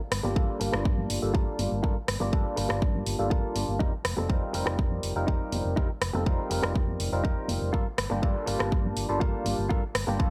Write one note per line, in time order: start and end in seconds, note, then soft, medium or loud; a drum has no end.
0.11 0.21 G1 medium
0.11 muted clean electric guitar stroke soft
0.11 cross-stick medium
0.11 open hi-hat loud
0.23 0.33 G1 medium
0.23 0.33 G3 medium
0.23 0.33 A#3 medium
0.23 0.33 D4 medium
0.23 0.33 F4 medium
0.23 0.33 G4 medium
0.23 muted clean electric guitar stroke medium
0.23 tambourine soft
0.23 high conga medium
0.35 0.46 G2 medium
0.35 0.58 G3 medium
0.35 0.58 A#3 medium
0.35 0.58 D4 medium
0.35 0.58 F4 medium
0.35 0.58 A4 loud
0.35 muted clean electric guitar stroke soft
0.35 kick loud
0.48 muted clean electric guitar stroke soft
0.60 0.70 G1 medium
0.60 1.19 G3 medium
0.60 1.19 A#3 medium
0.60 1.19 D4 medium
0.60 1.20 F4 medium
0.60 1.20 A5 medium
0.60 muted clean electric guitar stroke medium
0.60 open hi-hat medium
0.73 0.83 G1 medium
0.73 muted clean electric guitar stroke loud
0.73 cross-stick medium
0.85 1.04 G2 medium
0.85 muted clean electric guitar stroke soft
0.85 kick loud
0.98 tambourine soft
0.98 high conga medium
0.98 low conga medium
1.10 1.20 G1 medium
1.10 open hi-hat loud
1.10 tambourine medium
1.22 1.32 G1 medium
1.22 1.31 G3 medium
1.22 1.31 A#3 medium
1.22 1.32 D4 medium
1.22 1.32 F4 medium
1.22 1.32 A4 medium
1.34 1.59 F4 medium
1.34 1.59 A4 medium
1.34 1.59 A#4 medium
1.34 kick loud
1.59 1.69 G1 medium
1.59 open hi-hat medium
1.59 tambourine medium
1.59 high conga medium
1.70 1.81 G1 medium
1.70 tambourine soft
1.83 1.93 G2 medium
1.83 1.93 G3 medium
1.83 1.93 A#3 medium
1.83 1.93 D4 medium
1.83 1.96 F4 loud
1.83 1.94 F4 medium
1.83 1.96 A4 medium
1.83 1.94 A4 medium
1.83 1.97 A#4 loud
1.83 kick loud
2.07 2.18 G1 medium
2.07 muted clean electric guitar stroke soft
2.07 cross-stick medium
2.07 open hi-hat loud
2.20 2.30 G1 medium
2.20 2.30 G3 medium
2.20 2.30 A#3 medium
2.20 2.30 D4 medium
2.20 2.30 F4 medium
2.20 2.30 G4 medium
2.20 muted clean electric guitar stroke medium
2.20 tambourine soft
2.20 high conga medium
2.32 2.43 G2 medium
2.32 2.54 G3 medium
2.32 2.54 A#3 medium
2.32 2.54 D4 medium
2.32 2.55 F4 medium
2.32 2.55 A4 loud
2.32 muted clean electric guitar stroke soft
2.32 kick loud
2.45 muted clean electric guitar stroke soft
2.56 2.67 G1 medium
2.56 3.16 G3 medium
2.56 3.16 A#3 medium
2.56 3.16 D4 medium
2.56 3.16 F4 medium
2.56 3.17 A5 medium
2.56 muted clean electric guitar stroke medium
2.56 open hi-hat medium
2.69 2.79 G1 medium
2.69 muted clean electric guitar stroke loud
2.69 cross-stick medium
2.81 3.01 G2 medium
2.81 muted clean electric guitar stroke soft
2.81 kick loud
2.95 tambourine soft
2.95 high conga medium
2.95 low conga medium
3.06 3.16 G1 medium
3.06 open hi-hat medium
3.19 3.28 G1 medium
3.19 3.28 G3 medium
3.19 3.28 A#3 medium
3.19 3.28 D4 medium
3.19 3.28 F4 medium
3.19 3.28 A4 medium
3.30 3.41 G2 medium
3.30 3.55 F4 medium
3.30 3.56 A4 medium
3.30 3.56 A#4 medium
3.30 kick loud
3.55 3.65 G1 medium
3.55 open hi-hat medium
3.55 tambourine medium
3.55 high conga medium
3.68 3.78 G1 medium
3.79 3.90 F2 medium
3.79 3.90 G3 medium
3.79 3.90 C4 medium
3.79 3.93 D#4 loud
3.79 3.90 D#4 medium
3.79 3.90 F4 medium
3.79 3.93 G4 medium
3.79 3.90 A#4 medium
3.79 3.93 A#4 loud
3.79 kick loud
3.93 tambourine soft
4.04 4.15 F1 medium
4.04 muted clean electric guitar stroke soft
4.04 cross-stick medium
4.04 open hi-hat loud
4.17 4.27 F1 medium
4.17 4.26 G3 medium
4.17 4.26 C4 medium
4.17 4.27 D#4 medium
4.17 4.27 F4 medium
4.17 4.27 A4 medium
4.17 muted clean electric guitar stroke medium
4.17 tambourine soft
4.17 high conga medium
4.29 4.39 F2 medium
4.29 4.51 G3 medium
4.29 4.51 C4 medium
4.29 4.51 D#4 medium
4.29 4.51 F4 medium
4.29 4.51 A#4 loud
4.29 muted clean electric guitar stroke soft
4.29 kick loud
4.29 tambourine soft
4.41 muted clean electric guitar stroke soft
4.41 tambourine soft
4.53 4.64 F1 medium
4.53 5.12 G3 medium
4.53 5.13 C4 medium
4.53 5.13 D#4 medium
4.53 5.13 F4 medium
4.53 5.13 A#4 medium
4.53 muted clean electric guitar stroke medium
4.53 open hi-hat medium
4.66 4.76 F1 medium
4.66 muted clean electric guitar stroke loud
4.66 cross-stick medium
4.78 4.98 F2 medium
4.78 muted clean electric guitar stroke soft
4.78 kick loud
4.91 tambourine soft
4.91 high conga medium
4.91 low conga medium
5.03 5.13 F1 medium
5.03 open hi-hat medium
5.03 tambourine medium
5.16 5.25 F1 medium
5.16 5.25 G3 medium
5.16 5.25 C4 medium
5.16 5.25 D#4 medium
5.16 5.25 F4 medium
5.16 5.25 A#4 medium
5.27 5.38 F2 medium
5.27 5.52 D#4 medium
5.27 5.52 G4 medium
5.27 5.53 A#4 medium
5.27 kick loud
5.52 5.62 F1 medium
5.52 open hi-hat medium
5.52 tambourine medium
5.52 high conga medium
5.65 5.74 F1 medium
5.65 tambourine soft
5.76 5.87 F2 medium
5.76 5.87 G3 medium
5.76 5.87 C4 medium
5.76 5.89 D#4 loud
5.76 5.87 D#4 medium
5.76 5.87 F4 medium
5.76 5.90 G4 loud
5.76 5.87 A#4 loud
5.76 5.90 A#4 loud
5.76 kick loud
5.90 tambourine soft
6.01 6.11 F1 medium
6.01 muted clean electric guitar stroke soft
6.01 cross-stick medium
6.01 open hi-hat loud
6.13 6.23 F1 medium
6.13 6.23 G3 medium
6.13 6.23 C4 medium
6.13 6.23 D#4 medium
6.13 6.23 F4 medium
6.13 6.24 A4 medium
6.13 muted clean electric guitar stroke medium
6.13 tambourine soft
6.13 high conga medium
6.26 6.36 F2 medium
6.26 6.48 G3 medium
6.26 6.48 C4 medium
6.26 6.48 D#4 medium
6.26 6.48 F4 medium
6.26 6.48 A#4 loud
6.26 muted clean electric guitar stroke soft
6.26 kick loud
6.26 tambourine soft
6.38 muted clean electric guitar stroke soft
6.50 6.60 F1 medium
6.50 7.09 G3 medium
6.50 7.10 C4 medium
6.50 7.10 D#4 medium
6.50 7.10 F4 medium
6.50 7.10 A#4 medium
6.50 muted clean electric guitar stroke medium
6.50 open hi-hat medium
6.63 6.73 F1 medium
6.63 muted clean electric guitar stroke loud
6.63 cross-stick medium
6.75 6.94 F2 medium
6.75 muted clean electric guitar stroke soft
6.75 kick loud
6.88 tambourine soft
6.88 high conga medium
6.88 low conga medium
7.00 7.10 F1 medium
7.00 open hi-hat medium
7.00 tambourine medium
7.12 7.22 F1 medium
7.12 7.22 G3 medium
7.12 7.22 C4 medium
7.12 7.22 D#4 medium
7.12 7.22 F4 medium
7.12 7.22 A#4 medium
7.24 7.34 F2 medium
7.24 7.71 G3 medium
7.24 7.49 D#4 medium
7.24 7.71 D#4 medium
7.24 7.71 F4 medium
7.24 7.49 G4 medium
7.24 7.71 A#4 medium
7.24 7.50 A#4 medium
7.24 kick medium
7.38 tambourine soft
7.48 7.59 F1 medium
7.48 open hi-hat medium
7.48 tambourine medium
7.48 high conga medium
7.62 7.71 F1 medium
7.62 tambourine soft
7.73 7.83 G2 medium
7.73 7.83 G3 medium
7.73 7.83 A#3 medium
7.73 7.84 D4 medium
7.73 7.86 F4 loud
7.73 7.84 F4 medium
7.73 7.86 A4 medium
7.73 7.84 A4 loud
7.73 7.87 A#4 loud
7.73 kick loud
7.87 tambourine soft
7.97 8.08 G1 medium
7.97 muted clean electric guitar stroke soft
7.97 cross-stick medium
7.97 open hi-hat medium
8.10 8.20 G1 medium
8.10 8.20 G3 medium
8.10 8.20 A#3 medium
8.10 8.20 D4 medium
8.10 8.20 F4 medium
8.10 8.20 G4 medium
8.10 muted clean electric guitar stroke medium
8.10 tambourine soft
8.10 high conga medium
8.22 8.33 G2 medium
8.22 8.44 G3 medium
8.22 8.44 A#3 medium
8.22 8.45 D4 medium
8.22 8.45 F4 medium
8.22 8.45 A4 loud
8.22 muted clean electric guitar stroke soft
8.22 kick medium
8.35 muted clean electric guitar stroke soft
8.35 tambourine soft
8.46 8.57 G1 medium
8.46 9.06 G3 medium
8.46 9.06 A#3 medium
8.46 9.06 D4 medium
8.46 9.06 F4 medium
8.46 9.07 A5 medium
8.46 muted clean electric guitar stroke medium
8.46 open hi-hat medium
8.59 8.69 G1 medium
8.59 muted clean electric guitar stroke loud
8.59 cross-stick medium
8.71 8.91 G2 medium
8.71 muted clean electric guitar stroke soft
8.71 kick loud
8.84 tambourine soft
8.84 high conga medium
8.84 low conga medium
8.96 9.06 G1 medium
8.96 open hi-hat medium
8.96 tambourine medium
9.09 9.19 G1 medium
9.09 9.18 G3 medium
9.09 9.18 A#3 medium
9.09 9.18 D4 medium
9.09 9.18 F4 medium
9.09 9.19 A4 medium
9.20 9.31 G2 medium
9.20 9.67 G3 medium
9.20 9.67 A#3 medium
9.20 9.45 F4 medium
9.20 9.46 A4 medium
9.20 9.46 A#4 medium
9.20 kick medium
9.34 tambourine soft
9.45 9.56 G1 medium
9.45 open hi-hat medium
9.45 tambourine medium
9.45 high conga medium
9.58 9.68 G1 medium
9.58 tambourine soft
9.69 9.80 G3 medium
9.69 9.80 A#3 medium
9.69 9.80 D4 medium
9.69 9.83 F4 loud
9.69 9.80 F4 medium
9.69 9.83 A4 medium
9.69 9.80 A4 loud
9.69 9.83 A#4 loud
9.69 kick loud
9.83 tambourine soft
9.94 10.05 G1 medium
9.94 muted clean electric guitar stroke soft
9.94 cross-stick medium
9.94 open hi-hat loud
10.07 10.17 G1 medium
10.07 10.17 G3 medium
10.07 10.17 A#3 medium
10.07 10.17 D4 medium
10.07 10.17 F4 medium
10.07 10.17 G4 medium
10.07 muted clean electric guitar stroke medium
10.07 tambourine soft
10.07 high conga medium
10.19 10.29 G2 medium
10.19 10.30 G3 medium
10.19 10.30 A#3 medium
10.19 10.30 D4 medium
10.19 10.30 F4 medium
10.19 10.30 A4 loud
10.19 muted clean electric guitar stroke soft
10.19 kick loud